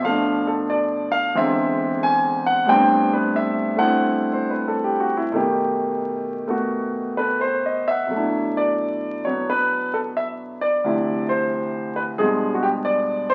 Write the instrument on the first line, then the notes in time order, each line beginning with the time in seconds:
grand piano
Already playing: B2
0.02 F3 A3 F5
0.09 D4
0.47 A4
0.70 D5
1.12 F5
1.35 E2 D3 G#3 C4 E5
2.03 G#5
2.46 F#5
2.66 A2 G3 B3 C4 G5
2.71 D4
3.13 B4
3.36 E5
3.77 A3 C4 D4 E4 F#5
4.33 C5
4.50 B4
4.68 A4
4.84 G4
5.00 F#4
5.17 E4
5.32 B2 D#3 A3
5.37 G4
6.48 A3 B3 F#4
7.17 A4 B4
7.41 B4 C5
7.66 D#5
7.88 E5 F#5
8.07 B2 F#3 A3
8.15 D4 E4
8.57 D5
9.25 F#3 B3 C#5
9.50 B4
9.94 A4
10.17 E5
10.61 D5
10.84 D2 C3 F3 E4
11.29 C5
11.96 B4
12.18 G2 B2 F3 G#3 G#4
12.54 F#4
12.63 G4
12.85 D5
13.30 C5